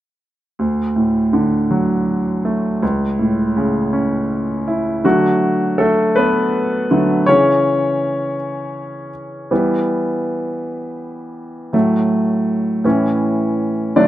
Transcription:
0.59 2.78 D2 soft
0.96 2.41 A2 soft
1.33 2.78 D3 soft
1.71 2.79 F#3 soft
2.45 2.81 A3 soft
2.82 5.01 C#2 soft
3.19 4.64 A2 soft
3.57 5.01 C#3 soft
3.93 5.01 C#4 soft
4.68 5.04 E4 soft
5.04 6.12 D3 soft
5.04 5.76 F#3 soft
5.04 5.79 A3 soft
5.04 5.81 F#4 medium
5.78 6.14 A3 soft
5.78 6.17 A4 medium
6.16 6.87 B3 soft
6.16 6.86 B4 medium
6.91 7.24 D3 soft
6.91 7.24 F#3 soft
6.91 7.25 A3 soft
7.26 8.35 C#3 soft
7.26 8.35 E3 soft
7.26 9.10 C#4 medium
7.26 9.09 C#5 medium
9.51 11.70 E3 soft
9.51 11.70 G3 soft
9.51 11.70 B3 soft
11.73 12.81 A2 soft
11.73 12.81 F#3 soft
11.73 12.81 A3 soft
12.84 13.92 A2 soft
12.84 13.92 E3 soft
12.84 13.93 C#4 soft
13.96 14.08 D3 soft
13.96 14.08 F#3 soft
13.96 14.08 A3 soft
13.96 14.08 D4 soft
13.96 14.08 D5 medium

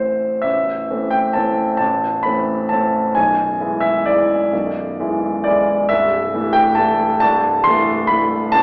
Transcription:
0.00 0.44 A1 soft
0.00 0.41 E3 soft
0.00 0.41 A3 soft
0.00 0.41 C4 soft
0.00 0.44 C5 soft
0.42 0.89 A0 soft
0.42 0.89 A1 soft
0.42 1.12 E5 medium
0.90 1.33 E3 soft
0.90 1.33 A3 soft
0.90 1.33 C4 soft
1.11 1.35 G5 medium
1.33 1.77 E3 soft
1.33 1.77 A3 soft
1.33 1.77 C4 soft
1.33 1.76 A5 medium
1.77 2.23 A0 soft
1.77 2.23 A1 soft
1.77 2.23 A5 medium
2.23 2.67 E3 soft
2.23 2.67 A3 soft
2.23 2.67 C4 soft
2.23 2.69 B5 medium
2.69 3.12 E3 soft
2.69 3.12 A3 soft
2.69 3.12 C4 soft
2.69 3.15 A5 medium
3.15 3.59 B0 soft
3.15 3.59 B1 soft
3.15 3.83 G#5 medium
3.60 4.02 E3 soft
3.60 4.02 G#3 soft
3.60 4.03 E4 soft
3.81 4.05 E5 medium
4.06 4.49 E3 soft
4.06 4.49 G#3 soft
4.06 4.49 E4 soft
4.06 5.42 D5 medium
4.53 4.97 B0 soft
4.53 4.97 B1 soft
5.00 5.41 E3 soft
5.00 5.42 G#3 soft
5.00 5.42 E4 soft
5.44 5.86 E3 soft
5.44 5.87 G#3 soft
5.44 5.87 E4 soft
5.44 5.89 D5 medium
5.89 6.32 C1 soft
5.89 6.32 C2 medium
5.89 6.54 E5 medium
6.34 6.73 E3 soft
6.34 6.73 A3 soft
6.34 6.73 E4 soft
6.53 6.76 G5 medium
6.75 7.17 E3 soft
6.75 7.17 A3 soft
6.75 7.18 E4 soft
6.75 7.19 A5 medium
7.20 7.64 C1 soft
7.20 7.64 C2 medium
7.20 7.64 A5 medium
7.64 8.06 E3 soft
7.64 8.06 A3 soft
7.64 8.06 E4 soft
7.64 8.09 C6 medium
8.07 8.49 E3 soft
8.07 8.49 A3 soft
8.07 8.49 E4 soft
8.07 8.52 B5 medium
8.52 8.63 A0 medium
8.52 8.63 A1 medium
8.52 8.63 A5 medium

